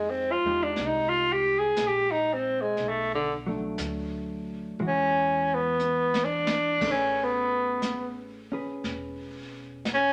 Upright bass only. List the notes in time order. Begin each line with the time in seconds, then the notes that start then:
Already playing: F2
0.44 E2
0.78 C2
1.78 A#1
2.77 B1
3.78 D2
4.79 E2
6.81 A1
8.84 E1